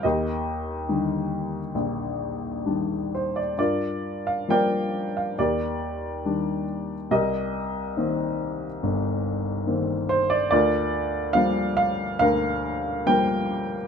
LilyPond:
<<
  \new Staff \with { instrumentName = "Upright piano" } { \time 4/4 \key g \minor \tempo 4 = 70 << { ees''2 r4. c''16 d''16 | d''8. f''16 g''8. f''16 d''4. r8 | ees''2.~ ees''8 c''16 d''16 | d''4 f''8 f''8 f''4 g''4 | } \\ { <g' bes'>2 r2 | <f' bes'>4 <bes' d''>4 <g' bes'>2 | <g' bes'>2.~ <g' bes'>8 r8 | <f' bes'>2 bes'4 bes'4 | } >> }
  \new Staff \with { instrumentName = "Upright piano" } { \clef bass \time 4/4 \key g \minor ees,4 <d ees g>4 bes,,4 <ees g d'>4 | g,4 <f g bes>4 ees,4 <ees g d'>4 | c,4 <ees bes c'>4 g,,4 <ees bes c'>4 | d,4 <f g bes>4 d,4 <f g bes>4 | }
>>